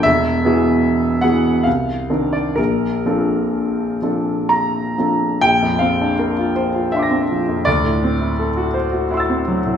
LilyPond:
\new Staff \with { instrumentName = "Grand piano" } { \time 3/4 \key bes \lydian \tempo 4 = 77 << { e''4. fis''8 f''8. d''16 | bes'2 bes''4 | g''8 f''4. <e'' f'' c''' d''' bes'''>4 | d''4. r8 <fis'' c''' e''' a'''>4 | } \\ { e,,8 <e b fis' gis'>4 <e b fis' gis'>8 c,8 <ees c' d' bes'>8 | bes,,8 <f c' d' a'>4 <f c' d' a'>4 <f c' d' a'>8 | bes,,16 f,16 c'16 d'16 bes'16 f'16 c''16 f'16 d'16 c'16 f16 f,16 | d,16 a,16 c'16 e'16 a'16 fis'16 c''16 fis'16 e'16 c'16 fis16 a,16 | } >> }